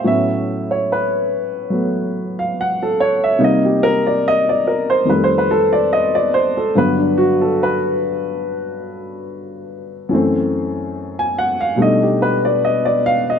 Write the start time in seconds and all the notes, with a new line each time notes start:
0.04 A2 F#3 B3 C#4 E5
0.71 C#5
0.92 B4
1.70 F#3 A3 B3
2.39 F5
2.61 F#5
2.83 A4
3.00 C#5
3.24 E5
3.39 C3 G3 A#3 D#4
3.44 D#5
3.65 G4
3.83 A#4
4.07 D5
4.28 D#5
4.49 D5
4.67 A#4
4.90 C5
5.05 F2 D#3 G3
5.10 A3 B4
5.24 C5
5.38 B4
5.51 A4
5.73 D5
5.93 D#5
6.15 D5
6.34 C5
6.57 A4
6.75 G2 D3 F#3 B3 B4
6.99 D4
7.18 F#4
7.41 A4
7.63 B4
10.09 F#2 E3 A3
10.14 C4
11.19 G#5
11.38 F#5
11.61 F5
11.76 B2 G3 A3 D4
11.81 D#4 D#5
12.03 G4
12.22 B4
12.45 D5
12.65 D#5
12.85 D5
13.06 F5
13.30 D#5